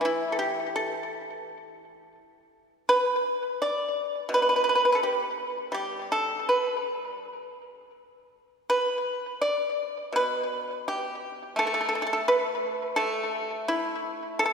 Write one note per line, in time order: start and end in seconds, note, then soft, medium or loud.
0.00 2.17 E3 soft
0.00 0.74 A3 soft
0.05 0.31 E4 medium
0.32 0.38 A4 soft
0.39 0.72 G4 medium
0.76 2.15 A4 medium
2.89 3.56 B4 medium
3.62 4.27 D5 medium
4.29 6.44 B2 soft
4.34 4.39 B4 medium
4.42 4.47 B4 soft
4.49 4.54 B4 soft
4.56 4.61 B4 soft
4.64 4.68 B4 soft
4.69 4.74 B4 soft
4.75 4.81 B4 soft
4.85 4.90 B4 soft
4.92 5.01 A4 soft
4.92 4.97 B4 soft
5.03 5.70 G4 medium
5.72 7.91 G3 soft
5.72 6.07 G4 medium
6.12 6.44 A4 medium
6.49 7.90 B4 medium
8.70 9.38 B4 medium
9.41 10.10 D5 medium
10.12 12.26 B2 soft
10.12 10.83 B4 medium
10.88 11.54 G4 medium
11.56 12.96 A3 soft
11.56 11.65 A4 medium
11.67 11.73 A4 medium
11.74 11.79 A4 medium
11.81 11.87 A4 soft
11.89 11.94 A4 soft
11.95 12.01 A4 soft
12.02 12.05 A4 medium
12.07 12.12 A4 soft
12.13 12.20 A4 medium
12.28 12.70 B4 medium
12.70 12.94 A4 medium
12.96 14.53 A3 medium
12.96 13.39 A4 medium
13.39 13.64 G4 medium
13.68 14.35 E4 medium
14.39 14.44 A4 medium
14.46 14.53 A4 soft